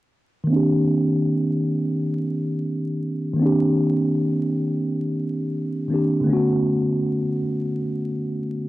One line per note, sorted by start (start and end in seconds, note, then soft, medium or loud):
0.44 3.31 D#3 medium
0.44 3.33 A#3 medium
0.50 3.34 C4 medium
0.50 3.36 D4 medium
0.56 3.37 G4 medium
3.33 5.84 D#3 medium
3.33 5.86 A#3 medium
3.39 5.87 C4 medium
3.39 5.89 D4 medium
3.46 5.90 G4 medium
5.88 6.25 D#3 soft
5.88 6.26 A#3 soft
5.88 6.27 C4 soft
5.92 6.28 D4 soft
5.92 6.28 G4 medium
6.21 8.69 D3 medium
6.21 8.69 A3 medium
6.27 8.69 B3 medium
6.27 8.69 C#4 medium
6.33 8.69 F#4 medium